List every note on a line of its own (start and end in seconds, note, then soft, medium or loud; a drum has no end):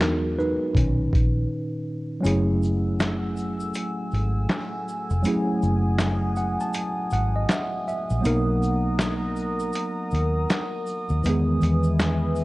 0.00 0.56 E2 medium
0.00 0.33 F#3 medium
0.00 0.33 G#3 soft
0.00 0.76 B3 medium
0.00 0.39 D#4 medium
0.00 0.76 F#4 loud
0.00 0.76 G#4 medium
0.00 0.38 A#4 medium
0.00 snare loud
0.00 clap medium
0.00 closed hi-hat medium
0.38 1.84 D#4 medium
0.38 1.84 B4 medium
0.38 shaker soft
0.75 1.07 B1 medium
0.75 1.83 A#2 soft
0.75 1.83 D#3 soft
0.75 1.84 C#4 medium
0.75 kick medium
0.75 closed hi-hat medium
1.13 1.45 A#1 medium
1.13 kick medium
1.13 closed hi-hat soft
1.13 shaker soft
2.21 5.18 F#3 medium
2.21 5.19 A3 medium
2.21 5.20 C#4 medium
2.21 shaker medium
2.25 3.71 F#1 loud
2.25 8.21 A3 medium
2.25 5.21 E4 medium
2.25 5.21 G#4 medium
2.25 11.21 F#5 medium
2.25 8.21 G#5 medium
2.25 5.22 E6 medium
2.25 closed hi-hat medium
2.62 shaker soft
2.64 shaker medium
3.00 snare loud
3.00 clap medium
3.00 closed hi-hat medium
3.00 shaker medium
3.37 shaker soft
3.39 shaker soft
3.60 shaker medium
3.74 closed hi-hat medium
3.74 shaker medium
4.11 4.45 G#1 medium
4.11 closed hi-hat soft
4.11 shaker soft
4.14 shaker soft
4.49 snare loud
4.49 clap medium
4.49 closed hi-hat medium
4.49 shaker medium
4.88 shaker soft
5.10 5.23 F1 loud
5.10 shaker soft
5.23 8.19 F#3 medium
5.23 8.20 A3 medium
5.23 8.21 C#4 medium
5.23 12.44 D#6 medium
5.23 closed hi-hat medium
5.23 shaker medium
5.27 8.22 E4 medium
5.27 8.22 G#4 medium
5.62 6.56 F#1 loud
5.62 shaker soft
5.99 snare loud
5.99 clap medium
5.99 closed hi-hat medium
5.99 shaker medium
6.36 6.58 F#5 medium
6.36 shaker soft
6.38 shaker soft
6.60 6.74 A5 medium
6.60 shaker medium
6.73 7.10 G#5 medium
6.73 closed hi-hat medium
6.73 shaker medium
7.11 7.45 G#1 medium
7.11 7.33 F#5 medium
7.11 closed hi-hat soft
7.11 shaker soft
7.13 shaker soft
7.36 7.49 D#5 medium
7.49 7.85 E5 medium
7.49 snare loud
7.49 clap medium
7.49 closed hi-hat medium
7.49 shaker medium
7.88 8.22 E5 medium
7.88 shaker soft
8.10 8.23 A#1 medium
8.10 shaker soft
8.21 11.19 F#3 medium
8.21 11.19 A#3 medium
8.21 11.20 B3 medium
8.21 11.21 A#4 medium
8.21 shaker medium
8.25 9.71 B1 loud
8.25 11.21 D#4 medium
8.25 11.21 A#4 loud
8.25 11.22 A#5 medium
8.25 closed hi-hat medium
8.62 shaker soft
8.99 snare loud
8.99 clap medium
8.99 closed hi-hat medium
8.99 shaker medium
9.36 shaker soft
9.38 shaker soft
9.60 shaker medium
9.73 closed hi-hat medium
9.73 shaker medium
10.11 10.45 D#2 medium
10.11 closed hi-hat soft
10.11 shaker soft
10.14 shaker soft
10.50 snare loud
10.50 clap medium
10.50 closed hi-hat medium
10.50 shaker medium
10.87 shaker soft
10.89 shaker soft
11.09 11.23 D#2 medium
11.09 shaker soft
11.24 11.57 E2 loud
11.24 12.44 E3 medium
11.24 12.44 G#3 medium
11.24 12.44 B3 medium
11.24 12.44 B4 medium
11.24 12.44 E5 medium
11.24 12.44 G#5 medium
11.24 closed hi-hat medium
11.24 shaker medium
11.28 12.44 D#3 medium
11.28 12.44 G#4 loud
11.61 12.44 E2 medium
11.61 closed hi-hat soft
11.61 shaker soft
11.63 shaker soft
11.83 shaker soft
11.99 snare loud
11.99 clap medium
11.99 closed hi-hat medium
11.99 shaker medium
12.36 shaker medium
12.38 shaker soft